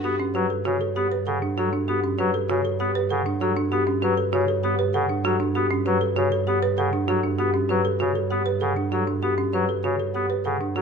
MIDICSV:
0, 0, Header, 1, 6, 480
1, 0, Start_track
1, 0, Tempo, 306122
1, 550, Time_signature, 6, 2, 24, 8
1, 16961, End_track
2, 0, Start_track
2, 0, Title_t, "Marimba"
2, 0, Program_c, 0, 12
2, 64, Note_on_c, 0, 67, 78
2, 380, Note_off_c, 0, 67, 0
2, 548, Note_on_c, 0, 71, 93
2, 861, Note_off_c, 0, 71, 0
2, 1032, Note_on_c, 0, 73, 80
2, 1343, Note_off_c, 0, 73, 0
2, 1510, Note_on_c, 0, 67, 73
2, 1822, Note_off_c, 0, 67, 0
2, 1989, Note_on_c, 0, 78, 84
2, 2302, Note_off_c, 0, 78, 0
2, 2470, Note_on_c, 0, 69, 86
2, 2782, Note_off_c, 0, 69, 0
2, 2953, Note_on_c, 0, 67, 85
2, 3263, Note_off_c, 0, 67, 0
2, 3434, Note_on_c, 0, 71, 97
2, 3743, Note_off_c, 0, 71, 0
2, 3911, Note_on_c, 0, 73, 86
2, 4222, Note_off_c, 0, 73, 0
2, 4394, Note_on_c, 0, 67, 80
2, 4703, Note_off_c, 0, 67, 0
2, 4871, Note_on_c, 0, 78, 91
2, 5182, Note_off_c, 0, 78, 0
2, 5359, Note_on_c, 0, 69, 86
2, 5665, Note_off_c, 0, 69, 0
2, 5832, Note_on_c, 0, 67, 98
2, 6143, Note_off_c, 0, 67, 0
2, 6314, Note_on_c, 0, 71, 110
2, 6623, Note_off_c, 0, 71, 0
2, 6791, Note_on_c, 0, 73, 98
2, 7102, Note_off_c, 0, 73, 0
2, 7274, Note_on_c, 0, 67, 87
2, 7583, Note_off_c, 0, 67, 0
2, 7748, Note_on_c, 0, 78, 107
2, 8061, Note_off_c, 0, 78, 0
2, 8222, Note_on_c, 0, 69, 88
2, 8539, Note_off_c, 0, 69, 0
2, 8709, Note_on_c, 0, 67, 86
2, 9022, Note_off_c, 0, 67, 0
2, 9185, Note_on_c, 0, 71, 108
2, 9500, Note_off_c, 0, 71, 0
2, 9667, Note_on_c, 0, 73, 98
2, 9981, Note_off_c, 0, 73, 0
2, 10151, Note_on_c, 0, 67, 87
2, 10462, Note_off_c, 0, 67, 0
2, 10627, Note_on_c, 0, 78, 93
2, 10941, Note_off_c, 0, 78, 0
2, 11108, Note_on_c, 0, 69, 88
2, 11421, Note_off_c, 0, 69, 0
2, 11593, Note_on_c, 0, 67, 93
2, 11903, Note_off_c, 0, 67, 0
2, 12077, Note_on_c, 0, 71, 103
2, 12385, Note_off_c, 0, 71, 0
2, 12554, Note_on_c, 0, 73, 85
2, 12863, Note_off_c, 0, 73, 0
2, 13031, Note_on_c, 0, 67, 79
2, 13342, Note_off_c, 0, 67, 0
2, 13514, Note_on_c, 0, 78, 84
2, 13824, Note_off_c, 0, 78, 0
2, 13987, Note_on_c, 0, 69, 86
2, 14301, Note_off_c, 0, 69, 0
2, 14467, Note_on_c, 0, 67, 88
2, 14781, Note_off_c, 0, 67, 0
2, 14952, Note_on_c, 0, 71, 89
2, 15263, Note_off_c, 0, 71, 0
2, 15431, Note_on_c, 0, 73, 81
2, 15742, Note_off_c, 0, 73, 0
2, 15919, Note_on_c, 0, 67, 73
2, 16225, Note_off_c, 0, 67, 0
2, 16395, Note_on_c, 0, 78, 89
2, 16704, Note_off_c, 0, 78, 0
2, 16875, Note_on_c, 0, 69, 80
2, 16961, Note_off_c, 0, 69, 0
2, 16961, End_track
3, 0, Start_track
3, 0, Title_t, "Marimba"
3, 0, Program_c, 1, 12
3, 68, Note_on_c, 1, 66, 67
3, 307, Note_on_c, 1, 61, 88
3, 381, Note_off_c, 1, 66, 0
3, 548, Note_on_c, 1, 66, 84
3, 621, Note_off_c, 1, 61, 0
3, 787, Note_on_c, 1, 69, 77
3, 861, Note_off_c, 1, 66, 0
3, 1027, Note_on_c, 1, 66, 102
3, 1101, Note_off_c, 1, 69, 0
3, 1268, Note_on_c, 1, 69, 83
3, 1341, Note_off_c, 1, 66, 0
3, 1508, Note_on_c, 1, 67, 79
3, 1581, Note_off_c, 1, 69, 0
3, 1749, Note_on_c, 1, 71, 93
3, 1821, Note_off_c, 1, 67, 0
3, 1988, Note_on_c, 1, 69, 84
3, 2062, Note_off_c, 1, 71, 0
3, 2230, Note_on_c, 1, 62, 76
3, 2301, Note_off_c, 1, 69, 0
3, 2472, Note_on_c, 1, 66, 99
3, 2542, Note_off_c, 1, 62, 0
3, 2709, Note_on_c, 1, 62, 88
3, 2783, Note_off_c, 1, 66, 0
3, 2949, Note_on_c, 1, 66, 76
3, 3022, Note_off_c, 1, 62, 0
3, 3194, Note_on_c, 1, 61, 89
3, 3262, Note_off_c, 1, 66, 0
3, 3429, Note_on_c, 1, 66, 85
3, 3503, Note_off_c, 1, 61, 0
3, 3671, Note_on_c, 1, 69, 87
3, 3742, Note_off_c, 1, 66, 0
3, 3915, Note_on_c, 1, 66, 103
3, 3982, Note_off_c, 1, 69, 0
3, 4149, Note_on_c, 1, 69, 80
3, 4224, Note_off_c, 1, 66, 0
3, 4391, Note_on_c, 1, 67, 81
3, 4462, Note_off_c, 1, 69, 0
3, 4631, Note_on_c, 1, 71, 104
3, 4702, Note_off_c, 1, 67, 0
3, 4868, Note_on_c, 1, 69, 88
3, 4942, Note_off_c, 1, 71, 0
3, 5111, Note_on_c, 1, 62, 85
3, 5181, Note_off_c, 1, 69, 0
3, 5352, Note_on_c, 1, 66, 97
3, 5422, Note_off_c, 1, 62, 0
3, 5591, Note_on_c, 1, 62, 98
3, 5663, Note_off_c, 1, 66, 0
3, 5828, Note_on_c, 1, 66, 80
3, 5902, Note_off_c, 1, 62, 0
3, 6067, Note_on_c, 1, 61, 100
3, 6141, Note_off_c, 1, 66, 0
3, 6309, Note_on_c, 1, 66, 89
3, 6381, Note_off_c, 1, 61, 0
3, 6546, Note_on_c, 1, 69, 84
3, 6622, Note_off_c, 1, 66, 0
3, 6788, Note_on_c, 1, 66, 110
3, 6861, Note_off_c, 1, 69, 0
3, 7028, Note_on_c, 1, 69, 85
3, 7101, Note_off_c, 1, 66, 0
3, 7268, Note_on_c, 1, 67, 88
3, 7342, Note_off_c, 1, 69, 0
3, 7508, Note_on_c, 1, 71, 113
3, 7581, Note_off_c, 1, 67, 0
3, 7750, Note_on_c, 1, 69, 95
3, 7821, Note_off_c, 1, 71, 0
3, 7988, Note_on_c, 1, 62, 82
3, 8062, Note_off_c, 1, 69, 0
3, 8230, Note_on_c, 1, 66, 114
3, 8301, Note_off_c, 1, 62, 0
3, 8467, Note_on_c, 1, 62, 97
3, 8542, Note_off_c, 1, 66, 0
3, 8707, Note_on_c, 1, 66, 84
3, 8781, Note_off_c, 1, 62, 0
3, 8947, Note_on_c, 1, 61, 100
3, 9021, Note_off_c, 1, 66, 0
3, 9187, Note_on_c, 1, 66, 84
3, 9261, Note_off_c, 1, 61, 0
3, 9425, Note_on_c, 1, 69, 94
3, 9501, Note_off_c, 1, 66, 0
3, 9665, Note_on_c, 1, 66, 103
3, 9740, Note_off_c, 1, 69, 0
3, 9908, Note_on_c, 1, 69, 87
3, 9980, Note_off_c, 1, 66, 0
3, 10145, Note_on_c, 1, 67, 77
3, 10221, Note_off_c, 1, 69, 0
3, 10389, Note_on_c, 1, 71, 114
3, 10460, Note_off_c, 1, 67, 0
3, 10630, Note_on_c, 1, 69, 92
3, 10702, Note_off_c, 1, 71, 0
3, 10865, Note_on_c, 1, 62, 95
3, 10942, Note_off_c, 1, 69, 0
3, 11103, Note_on_c, 1, 66, 112
3, 11180, Note_off_c, 1, 62, 0
3, 11344, Note_on_c, 1, 62, 87
3, 11420, Note_off_c, 1, 66, 0
3, 11583, Note_on_c, 1, 66, 85
3, 11660, Note_off_c, 1, 62, 0
3, 11820, Note_on_c, 1, 61, 89
3, 11899, Note_off_c, 1, 66, 0
3, 12061, Note_on_c, 1, 66, 92
3, 12139, Note_off_c, 1, 61, 0
3, 12306, Note_on_c, 1, 69, 86
3, 12379, Note_off_c, 1, 66, 0
3, 12543, Note_on_c, 1, 66, 105
3, 12621, Note_off_c, 1, 69, 0
3, 12785, Note_on_c, 1, 69, 86
3, 12860, Note_off_c, 1, 66, 0
3, 13023, Note_on_c, 1, 67, 82
3, 13101, Note_off_c, 1, 69, 0
3, 13261, Note_on_c, 1, 71, 101
3, 13339, Note_off_c, 1, 67, 0
3, 13501, Note_on_c, 1, 69, 88
3, 13579, Note_off_c, 1, 71, 0
3, 13743, Note_on_c, 1, 62, 82
3, 13819, Note_off_c, 1, 69, 0
3, 13985, Note_on_c, 1, 66, 85
3, 14059, Note_off_c, 1, 62, 0
3, 14226, Note_on_c, 1, 62, 74
3, 14300, Note_off_c, 1, 66, 0
3, 14467, Note_on_c, 1, 66, 72
3, 14541, Note_off_c, 1, 62, 0
3, 14705, Note_on_c, 1, 61, 90
3, 14781, Note_off_c, 1, 66, 0
3, 14949, Note_on_c, 1, 66, 76
3, 15020, Note_off_c, 1, 61, 0
3, 15193, Note_on_c, 1, 69, 82
3, 15262, Note_off_c, 1, 66, 0
3, 15433, Note_on_c, 1, 66, 93
3, 15503, Note_off_c, 1, 69, 0
3, 15672, Note_on_c, 1, 69, 74
3, 15743, Note_off_c, 1, 66, 0
3, 15909, Note_on_c, 1, 67, 70
3, 15983, Note_off_c, 1, 69, 0
3, 16147, Note_on_c, 1, 71, 93
3, 16222, Note_off_c, 1, 67, 0
3, 16387, Note_on_c, 1, 69, 78
3, 16461, Note_off_c, 1, 71, 0
3, 16632, Note_on_c, 1, 62, 77
3, 16701, Note_off_c, 1, 69, 0
3, 16870, Note_on_c, 1, 66, 90
3, 16943, Note_off_c, 1, 62, 0
3, 16961, Note_off_c, 1, 66, 0
3, 16961, End_track
4, 0, Start_track
4, 0, Title_t, "Violin section"
4, 0, Program_c, 2, 48
4, 0, Note_on_c, 2, 59, 76
4, 0, Note_on_c, 2, 66, 74
4, 244, Note_off_c, 2, 59, 0
4, 245, Note_off_c, 2, 66, 0
4, 16961, End_track
5, 0, Start_track
5, 0, Title_t, "Pipe organ"
5, 0, Program_c, 3, 19
5, 66, Note_on_c, 3, 59, 74
5, 248, Note_off_c, 3, 59, 0
5, 546, Note_on_c, 3, 54, 101
5, 727, Note_off_c, 3, 54, 0
5, 1029, Note_on_c, 3, 49, 72
5, 1209, Note_off_c, 3, 49, 0
5, 1505, Note_on_c, 3, 59, 72
5, 1687, Note_off_c, 3, 59, 0
5, 1986, Note_on_c, 3, 49, 92
5, 2167, Note_off_c, 3, 49, 0
5, 2475, Note_on_c, 3, 54, 72
5, 2653, Note_off_c, 3, 54, 0
5, 2954, Note_on_c, 3, 59, 78
5, 3133, Note_off_c, 3, 59, 0
5, 3430, Note_on_c, 3, 54, 112
5, 3610, Note_off_c, 3, 54, 0
5, 3912, Note_on_c, 3, 49, 73
5, 4091, Note_off_c, 3, 49, 0
5, 4390, Note_on_c, 3, 59, 80
5, 4570, Note_off_c, 3, 59, 0
5, 4869, Note_on_c, 3, 49, 100
5, 5049, Note_off_c, 3, 49, 0
5, 5347, Note_on_c, 3, 54, 81
5, 5528, Note_off_c, 3, 54, 0
5, 5833, Note_on_c, 3, 59, 86
5, 6012, Note_off_c, 3, 59, 0
5, 6317, Note_on_c, 3, 54, 100
5, 6494, Note_off_c, 3, 54, 0
5, 6794, Note_on_c, 3, 49, 80
5, 6973, Note_off_c, 3, 49, 0
5, 7272, Note_on_c, 3, 59, 89
5, 7451, Note_off_c, 3, 59, 0
5, 7751, Note_on_c, 3, 49, 102
5, 7930, Note_off_c, 3, 49, 0
5, 8231, Note_on_c, 3, 54, 83
5, 8410, Note_off_c, 3, 54, 0
5, 8708, Note_on_c, 3, 59, 88
5, 8889, Note_off_c, 3, 59, 0
5, 9193, Note_on_c, 3, 54, 110
5, 9372, Note_off_c, 3, 54, 0
5, 9672, Note_on_c, 3, 49, 85
5, 9851, Note_off_c, 3, 49, 0
5, 10155, Note_on_c, 3, 59, 84
5, 10333, Note_off_c, 3, 59, 0
5, 10629, Note_on_c, 3, 49, 96
5, 10809, Note_off_c, 3, 49, 0
5, 11108, Note_on_c, 3, 54, 77
5, 11289, Note_off_c, 3, 54, 0
5, 11585, Note_on_c, 3, 59, 83
5, 11767, Note_off_c, 3, 59, 0
5, 12070, Note_on_c, 3, 54, 107
5, 12250, Note_off_c, 3, 54, 0
5, 12546, Note_on_c, 3, 49, 77
5, 12727, Note_off_c, 3, 49, 0
5, 13027, Note_on_c, 3, 59, 76
5, 13208, Note_off_c, 3, 59, 0
5, 13505, Note_on_c, 3, 49, 101
5, 13687, Note_off_c, 3, 49, 0
5, 13988, Note_on_c, 3, 54, 76
5, 14169, Note_off_c, 3, 54, 0
5, 14469, Note_on_c, 3, 59, 76
5, 14649, Note_off_c, 3, 59, 0
5, 14947, Note_on_c, 3, 54, 105
5, 15128, Note_off_c, 3, 54, 0
5, 15428, Note_on_c, 3, 49, 78
5, 15609, Note_off_c, 3, 49, 0
5, 15913, Note_on_c, 3, 59, 72
5, 16092, Note_off_c, 3, 59, 0
5, 16388, Note_on_c, 3, 49, 92
5, 16569, Note_off_c, 3, 49, 0
5, 16876, Note_on_c, 3, 54, 72
5, 16961, Note_off_c, 3, 54, 0
5, 16961, End_track
6, 0, Start_track
6, 0, Title_t, "Double bass"
6, 0, Program_c, 4, 43
6, 0, Note_on_c, 4, 43, 79
6, 16961, Note_off_c, 4, 43, 0
6, 16961, End_track
0, 0, End_of_file